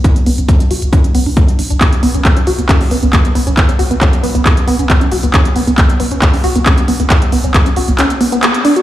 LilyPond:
<<
  \new Staff \with { instrumentName = "Synth arpeggio sound" } { \time 4/4 \key b \minor \tempo 4 = 136 b16 r16 b16 cis'16 b16 cis'16 fis'16 r16 cis'16 r16 b16 d'16 b16 r16 d'16 d'16 | b16 r16 b16 cis'16 b16 cis'16 fis'16 b16 cis'16 r16 b16 b16 b16 r16 b16 cis'16 | b16 cis'16 fis'16 b16 cis'16 r16 b16 b16 b16 r16 b16 cis'16 b16 cis'16 fis'16 b16 | cis'16 r16 b16 b16 b16 r16 b16 cis'16 b16 cis'16 fis'16 b16 cis'16 r16 b16 b16 |
b16 r16 b16 cis'16 b16 cis'16 fis'16 b16 cis'16 r16 b16 b16 b16 r16 d'16 fis'16 | }
  \new Staff \with { instrumentName = "Sub bass" } { \clef bass \time 4/4 \key b \minor r8 b,,16 b,,16 r8 b,,16 b,,16 r8 b,,16 b,,16 r8 b,,16 b,,16 | r8 b,,16 b,,16 r8 b,,16 b,,16 r8 b,,16 b,,16 r8 b,,16 b,,16 | r8 b,,16 b,,16 r8 b,,16 b,,16 r8 b,,16 b,,16 r8 b,,16 b,,16 | r8 b,,16 b,,16 r8 b,,16 b,,16 r8 b,,16 b,,16 r8 b,,16 b,,16 |
r8 b,,16 b,,16 r8 b,,16 b,,16 r2 | }
  \new DrumStaff \with { instrumentName = "Drums" } \drummode { \time 4/4 <hh bd>16 hh16 hho16 hh16 <hh bd>16 hh16 hho16 hh16 <hh bd>16 hh16 hho16 hho16 <hh bd>16 hh16 hho16 hh16 | <hc hh bd>16 hh16 hho16 hh16 <hc hh bd>16 hh16 hho16 hh16 <hc hh bd>16 hho16 hho16 hh16 <hc hh bd>16 hh16 hho16 hh16 | <hc hh bd>16 hh16 hho16 hh16 <hc hh bd>16 hh16 hho16 hh16 <hc hh bd>16 hh16 hho16 hh16 <hc hh bd>16 hh16 hho16 hh16 | <hc hh bd>16 hh16 hho16 hh16 <hc hh bd>16 hh16 hho16 hh16 <hc hh bd>16 hho16 hho16 hh16 <hc hh bd>16 hh16 hho16 hh16 |
<hc hh bd>16 hh16 hho16 hh16 <hc hh bd>16 hh16 hho16 hh16 <hc hh>16 hh16 hho16 hh16 <hc hh>16 hh16 hho16 hh16 | }
>>